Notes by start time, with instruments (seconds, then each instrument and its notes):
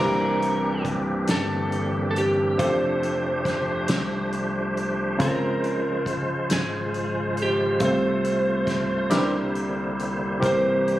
Already playing: grand piano C4 D4
0.00 fingered electric bass C2, grand piano C3 A#3 E4 G4, tonewheel organ E3 A#3 C4 D4 G4, electric slide guitar A#4
0.42 closed hi-hat
0.85 kick, closed hi-hat
1.27 fingered electric bass G1, electric slide guitar A4, snare, closed hi-hat
1.72 closed hi-hat
2.11 electric slide guitar A4
2.16 electric slide guitar G4, closed hi-hat
2.57 fingered electric bass F1, grand piano C4 D4 F4 G4 A4, electric slide guitar C5, kick, closed hi-hat
2.61 tonewheel organ F3 A3 C5
3.03 closed hi-hat
3.45 kick, snare, closed hi-hat
3.88 fingered electric bass C2, snare, closed hi-hat
4.32 closed hi-hat
4.77 closed hi-hat
5.17 fingered electric bass C#2, grand piano C#3 G#3 C4 C#4 F4 C5, tonewheel organ C#3 F3 G#3 F4, kick, closed hi-hat
5.21 electric slide guitar A#4
5.64 closed hi-hat
6.06 kick, closed hi-hat
6.50 fingered electric bass G#1, electric slide guitar G#4, snare, closed hi-hat
6.94 closed hi-hat
7.37 closed hi-hat
7.42 electric slide guitar G4
7.79 fingered electric bass C2, grand piano C3 A3 C4 F4 A4 C5, tonewheel organ A3 F4, kick, closed hi-hat
7.85 electric slide guitar C5
8.24 closed hi-hat
8.67 kick, snare, closed hi-hat
9.10 fingered electric bass C2, grand piano C3 D4 E4 G4 A#4 B4, tonewheel organ D3 G3 A#3 E4, snare, closed hi-hat
9.18 grand piano C5
9.55 closed hi-hat
9.99 closed hi-hat
10.39 fingered electric bass C2, grand piano C3 E3 C4 G4 A#4 C5, kick
10.43 tonewheel organ E3 G4, electric slide guitar C5, closed hi-hat
10.88 closed hi-hat